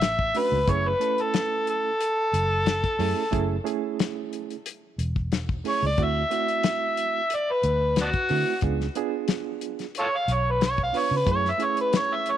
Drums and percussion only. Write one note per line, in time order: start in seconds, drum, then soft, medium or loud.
0.01 snare loud
0.01 closed hi-hat medium
0.19 kick medium
0.35 open hi-hat medium
0.67 kick medium
0.67 closed hi-hat medium
1.01 closed hi-hat medium
1.18 closed hi-hat soft
1.34 snare medium
1.34 closed hi-hat medium
1.67 closed hi-hat medium
2.01 closed hi-hat medium
2.34 closed hi-hat medium
2.66 snare loud
2.66 closed hi-hat medium
2.84 kick medium
2.84 closed hi-hat soft
3.00 open hi-hat medium
3.33 kick medium
3.33 closed hi-hat medium
3.67 closed hi-hat soft
3.99 snare loud
3.99 closed hi-hat medium
4.33 closed hi-hat soft
4.51 closed hi-hat soft
4.66 closed hi-hat medium
4.99 closed hi-hat medium
5.16 kick medium
5.32 snare medium
5.32 closed hi-hat medium
5.49 kick medium
5.65 open hi-hat medium
5.98 kick medium
5.98 closed hi-hat medium
6.31 closed hi-hat medium
6.48 closed hi-hat soft
6.63 snare loud
6.63 closed hi-hat medium
6.97 closed hi-hat medium
7.30 closed hi-hat medium
7.63 closed hi-hat medium
7.96 snare medium
7.96 closed hi-hat medium
8.13 kick medium
8.13 closed hi-hat soft
8.29 open hi-hat medium
8.61 kick medium
8.61 closed hi-hat medium
8.80 snare soft
8.95 closed hi-hat medium
9.28 snare loud
9.28 closed hi-hat medium
9.61 closed hi-hat medium
9.79 snare soft
9.79 closed hi-hat soft
9.95 closed hi-hat medium
10.28 closed hi-hat medium
10.61 snare loud
10.61 closed hi-hat medium
10.78 kick medium
10.94 open hi-hat medium
11.27 kick medium
11.27 closed hi-hat medium
11.45 snare soft
11.60 closed hi-hat medium
11.77 closed hi-hat soft
11.93 snare loud
11.93 closed hi-hat medium
12.26 closed hi-hat medium